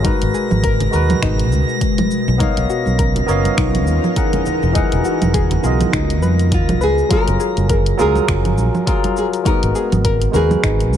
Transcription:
Already playing: A#6
0.03 B2 G#3 D#4 F#4 A#4, kick, closed hi-hat, high conga, shaker
0.07 B4
0.22 G#1, closed hi-hat, shaker
0.34 G#4, shaker
0.51 G#1, high conga, low conga, shaker
0.63 A#4, kick, closed hi-hat, shaker
0.80 closed hi-hat, low conga, shaker
0.91 D#2 G#3 F#4 A#4, shaker
0.95 B4
1.10 closed hi-hat, high conga, low conga, shaker
1.22 G#1 D#4, finger snap, kick, closed hi-hat, shaker
1.39 closed hi-hat, shaker
1.52 C#2, high conga, shaker
1.69 shaker
1.81 kick, closed hi-hat, shaker
1.98 closed hi-hat, high conga, low conga, shaker
2.11 shaker
2.28 B1, shaker
2.38 B3 C#4 D#4 F4 A#4 C#5 D#5, kick, closed hi-hat, high conga, shaker
2.43 F5
2.57 B1, closed hi-hat, shaker
2.70 F#4, shaker
2.86 B1, high conga, shaker
2.99 A#4, kick, closed hi-hat, shaker
3.16 closed hi-hat, low conga, shaker
3.26 F#1 B3 A#4 C#5 D#5, shaker
3.31 F5
3.45 closed hi-hat, high conga, shaker
3.57 B1 D#4, finger snap, kick, closed hi-hat, shaker
3.75 closed hi-hat, low conga, shaker
3.87 D#2, high conga, shaker
4.04 low conga, shaker
4.16 E3 D#4 G#4 A#4 F#5, kick, closed hi-hat, shaker
4.33 closed hi-hat, high conga, low conga, shaker
4.46 G#3 F#4, low conga, shaker
4.63 E1, shaker
4.73 E3 D#4 G#4 A#4, kick, closed hi-hat, high conga, shaker
4.78 F#5
4.92 E1, closed hi-hat, shaker
5.05 F#4, shaker
5.22 E1, closed hi-hat, high conga, low conga, shaker
5.34 G#4, kick, closed hi-hat, shaker
5.51 closed hi-hat, low conga, shaker
5.61 B1 C#3 B3 F4 G#4 A#4, shaker
5.66 D#5
5.81 closed hi-hat, high conga, low conga, shaker
5.93 C#2 D#3 B3 D#4 F4, finger snap, kick, closed hi-hat, shaker
6.10 closed hi-hat, shaker
6.22 F2 B4, high conga, shaker
6.39 closed hi-hat, shaker
6.52 F4, kick, closed hi-hat, shaker
6.69 B1, closed hi-hat, high conga, low conga, shaker
6.81 C#2 G#4 B4, shaker
6.98 shaker
7.09 F#3 F4 G#4 A#4, kick, closed hi-hat, high conga, shaker
7.13 A#4
7.28 F#1, closed hi-hat, shaker
7.40 G#4, shaker
7.57 F#1, closed hi-hat, high conga, shaker
7.69 G#4 A#4, kick, closed hi-hat, shaker
7.86 closed hi-hat, shaker
7.97 C#2 F#3 F4 G#4 A#4, low conga, shaker
8.02 A#4
8.15 high conga, low conga, shaker
8.28 F#1 F4, finger snap, kick, closed hi-hat, shaker
8.45 closed hi-hat, low conga, shaker
8.58 A#1, high conga, shaker
8.75 low conga, shaker
8.86 F#3 F4 G#4 A#4, kick, closed hi-hat, shaker
9.04 closed hi-hat, high conga, shaker
9.17 G#4, shaker
9.33 closed hi-hat, shaker
9.44 G#3 D#4 F#4 A#4, kick, closed hi-hat, high conga, shaker
9.48 B3
9.63 G#1, closed hi-hat, shaker
9.75 G#4, shaker
9.92 G#1, closed hi-hat, high conga, low conga, shaker
10.04 A#4, kick, closed hi-hat, shaker
10.22 closed hi-hat, shaker
10.32 D#2 G#3 F#4 A#4, low conga, shaker
10.36 G#4 B4
10.51 high conga, low conga, shaker
10.63 G#1 D#4, finger snap, kick, closed hi-hat, shaker
10.80 closed hi-hat, shaker
10.93 C#2, high conga, shaker

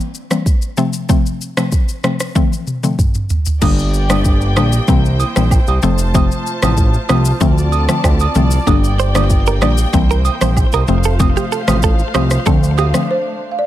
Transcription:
0.00 shaker
0.15 shaker
0.31 E3 G3 A#3 C4, cross-stick, shaker
0.46 kick, shaker
0.62 shaker
0.77 C3 F3 A3 C4, shaker
0.93 shaker
1.09 C3 F3 A3 C4, kick, shaker
1.26 shaker
1.41 shaker
1.57 C3 F3 A3 C4, cross-stick, shaker
1.72 kick, shaker
1.89 shaker
2.04 C3 F3 A3 C4, cross-stick, shaker
2.20 cross-stick, shaker
2.35 D3 F3 A3 C4, kick, high tom, shaker
2.52 high tom, shaker
2.67 mid tom, shaker
2.83 D3 F3 A3 C4, mid tom, shaker
2.99 kick, mid tom, shaker
3.14 mid tom, shaker
3.30 floor tom, shaker
3.46 floor tom, shaker
3.62 G1 D3 G3 A#3 D4 G4 D5 G5, kick, crash, high agogo, shaker
3.79 shaker
3.94 shaker
4.10 D3 G3 A#3 D4, cross-stick, high agogo, shaker
4.25 kick, shaker
4.41 shaker
4.56 A#1 D3 G3 A#3 D4, cross-stick, high agogo, shaker
4.73 shaker
4.88 C2 E3 G3 A#3 C4 E4 C5, kick, shaker
5.05 shaker
5.20 high agogo, shaker
5.36 A#1 E3 G3 A#3 C4, cross-stick, shaker
5.51 kick, low woodblock, shaker
5.67 C2, high agogo, shaker
5.82 F1 C3 F3 A3 C4 F4 A5, shaker
5.98 shaker
6.14 C3 F3 A3 C4, kick, high agogo, shaker
6.32 shaker
6.47 shaker
6.62 A1 C3 F3 A3 C4, cross-stick, high agogo, shaker
6.77 kick, shaker
6.94 shaker
7.09 C2 C3 F3 A3 C4, cross-stick, high agogo, shaker
7.25 shaker
7.41 D2 D3 F3 A3 C4 D5 A5, kick, shaker
7.58 shaker
7.72 high agogo, shaker
7.89 D3 F3 A3 C4, cross-stick, shaker
8.04 D2, kick, cross-stick, low woodblock, shaker
8.20 high agogo, shaker
8.35 C2 D3 F3 A3 C4, shaker
8.51 shaker
8.67 G1 D3 G3 A#3 D4 G4 G5, kick, high agogo, shaker
8.84 shaker
8.99 C5, shaker
9.15 D3 G3 A#3 D4 D5, cross-stick, high agogo, shaker
9.30 kick, shaker
9.46 A#4, shaker
9.61 A#1 D3 G3 A#3 D4 D5, cross-stick, high agogo, shaker
9.78 shaker
9.93 C2 E3 G3 A#3 C4 E4 C5, kick, shaker
10.11 A#4, shaker
10.25 high agogo, shaker
10.41 A#1 E3 G3 A#3 C4 C5, cross-stick, shaker
10.57 kick, low woodblock, shaker
10.72 C2 A#4, high agogo, shaker
10.88 F1 C3 F3 A3 C4 F4 F5, shaker
11.04 A4, shaker
11.20 C3 F3 A3 C4, kick, high agogo, shaker
11.37 G4, shaker
11.52 A4, shaker
11.67 A1 C3 F3 A3 C4, cross-stick, high agogo, shaker
11.83 A4, kick, shaker
11.99 shaker
12.14 C2 C3 F3 A3 C4 C5, cross-stick, high agogo, shaker
12.31 cross-stick, shaker
12.46 D2 D3 F3 A3 C4 D4 A4, kick, shaker
12.63 shaker
12.78 G4, high agogo, shaker
12.94 D3 F3 A3 C4, cross-stick, shaker
13.11 C5
13.52 F5
13.59 D5

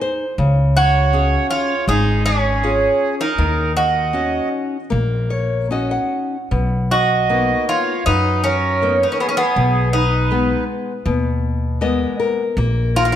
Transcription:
Already playing: D#4 G#4
0.01 C5
0.38 C#2 C#3
0.77 F#4 C#5
1.13 C#4 G#4 F5
1.50 F4 C#5
1.88 G#1 G#3 D#4 G#4
2.25 C#4 G#4
2.63 C#4 F4 G#4
3.21 D#4 A#4
3.38 D#2 D#3
3.77 F#4 D#5
4.13 C#4 D#4 F#4
4.90 A#1 A#3
5.30 C#5
5.71 C#4 D#4 F#4 D#5
5.91 F#5
6.51 B1 B2
6.91 F#4 D#5
7.29 A#3 B3 D#4
7.69 F4 C#5
8.06 F#2 F#3 D#4 B4
8.44 C#4 A#4
8.82 A#3 B3 D#4
9.03 D#4 B4
9.12 C#4 A#4
9.20 B3 G#4
9.29 C#4 A#4
9.37 B3 G#4
9.56 B1 B2
9.93 D#4 B4
10.31 G#3 B3
11.05 D#2 B2
11.81 G#3 A#3 B3 D#5
12.20 A#4
12.57 A#1 A#3
12.96 F4 A#4
13.05 F4
13.12 F4

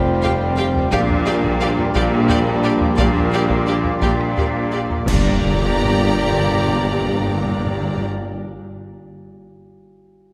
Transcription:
Already playing: F1 F2 G3 C4 F4 G4 C5
0.22 G4 F5 G5, taiko low
0.56 G4 F5 G5
0.76 taiko low
0.91 A#1 A#2 G3 A#3 D4 F4 G4 D5 F5, taiko
1.10 taiko low
1.26 G4 D5 F5
1.44 taiko
1.60 G4 D5 F5
1.78 taiko low
1.94 A#1 A#2 G4 D5 F5, taiko
2.13 taiko rim
2.28 G4 D5 F5, taiko low
2.64 G4 D5 F5
2.81 taiko low
2.97 A#1 A#2 G4 D5 F5, taiko
3.16 taiko low
3.32 G4 D5 F5
3.50 taiko
3.67 G4 D5 F5
3.85 taiko low
4.02 A#1 A#2 G4 D5 F5, taiko
4.20 taiko rim
4.37 G4 D5 F5, taiko low
4.72 G4 D5 F5
4.90 taiko low
5.06 G1 G2 A#3 D4 G4 D5 A#5, concert bass drum, taiko, crash, impact
5.16 G2
5.23 G2
5.31 G2
5.38 G2
5.46 G2
5.53 G2
5.61 G2
5.69 G2
5.77 G2
5.85 G2
5.93 G2
6.01 G2
6.08 G2
6.16 G2
6.23 G2
6.31 G2
6.39 G2
6.46 G2
6.54 G2
6.61 G2
6.68 G2
6.76 G2
6.84 G2
6.91 G2
6.99 G2
7.06 G2
7.13 G2
7.21 G2
7.28 G2
7.36 G2
7.44 G2
7.51 G2
7.59 G2
7.66 G2
7.74 G2
7.81 G2
7.88 G2
7.97 G2

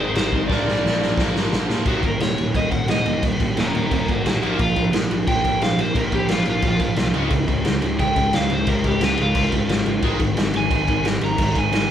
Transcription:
Already playing: G#2 D#3 G#3 C5
0.00 G#1
0.15 G#1 C5, snare, crash
0.32 G#1, kick
0.48 A#1 A#2 F3 D5, kick, snare
0.52 A#3
0.68 A#1, snare
0.84 A#1, snare
1.02 snare
1.17 A#1 A#2 F3 A#3, kick, snare
1.35 A#1, snare
1.53 A#1, snare
1.70 A#2, snare
1.86 D#1 D#2 A#2 D#3 F#4, kick, crash
2.03 D#1 D#2 A#2 A#4, kick, crash
2.20 D#1 D#2 A#2 C#5, snare, crash
2.38 D#1 D#2 A#2, crash
2.54 D#1 D#2 A#2 D#5, kick, crash
2.71 D#1 D#2 A#2 F#5, kick, crash
2.88 D#1 D#2 A#2 D#5, snare, crash
3.06 D#1 D#2 A#2, crash
3.23 D#1 D#2 A#2, kick, crash
3.40 D#1 D#2 A#2, kick, crash
3.57 D#1 D#2 A#2 C#4 A#4, snare, crash
3.73 D#1 D#2 A#2 C#4 A#4, crash
3.91 D#1 D#2 A#2 C#4 A#4, kick, crash
4.08 D#2 A#2 A#3, kick, crash
4.12 F#4
4.25 A#1 D#2 A#2 A#3 F#4, snare, crash
4.42 A#1 A#2 F3 A#3 F#4, crash
4.59 A#1 A#2 F3 F4, kick, crash
4.76 A#1 A#2 F3, kick, crash
4.93 A#1 A#2 F3, snare, crash
5.11 A#1 A#2 F3, crash
5.27 A#1 A#2 F3 G5, kick, crash
5.44 A#1 A#2 F3, kick, crash
5.61 A#1 A#2 F3 F5, snare, crash
5.78 A#1 A#2 F3 C5, crash
5.95 A#1 A#2 F3 A#4, kick, crash
6.12 A#1 A#2 F3 G4, kick, crash
6.28 A#1 A#2 F3 F4, snare, crash
6.45 A#1 A#2 F3, crash
6.50 F4
6.62 A#1 A#2 F3, kick, crash
6.79 A#2 F3, kick, crash
6.96 C2 A#2 F3, snare, crash
7.14 C#2 C#3 G#3 C#4, crash
7.30 C#2 C#3 G#3, kick, crash
7.48 C#2 C#3 G#3, kick, crash
7.65 C#2 C#3 G#3, snare, crash
7.82 C#2 C#3 G#3, crash
7.99 C#2 C#3 G#3 G5, kick, crash
8.16 C#2 C#3 G#3, kick, crash
8.33 C#2 C#3 G#3 F5, snare, crash
8.50 C#2 C#3 G#3 C5, crash
8.67 C#2 C#3 G#3 A#4, kick, crash
8.84 C#2 C#3 G#3 G4, kick, crash
9.01 C#2 C#3 G#3 F4, snare, crash
9.17 C#2 C#3 G#3 F4, crash
9.35 C#2 C#3 G#3, kick, crash
9.52 C#3 G#3, kick, crash
9.69 G#1 C#3 G#3, snare, crash
9.85 G#1 C#3 G#3, crash
10.02 G#1 G#2 D#3 G#3, kick, crash
10.19 G#1 G#2 D#3, kick, crash
10.37 G#1 G#2 D#3, snare, crash
10.54 G#1 G#2 D#3 G#5, crash
10.71 G#1 G#2 D#3, kick, crash
10.87 G#1 G#2 D#3, kick, crash
11.04 G#1 G#2 D#3, snare, crash
11.21 G#1 G#2 D#3 A#5, crash
11.38 G#1 G#2 D#3, kick, crash
11.55 G#1 G#2 D#3, kick, crash
11.59 G#5
11.72 G#1 G#2 D#3, snare, crash

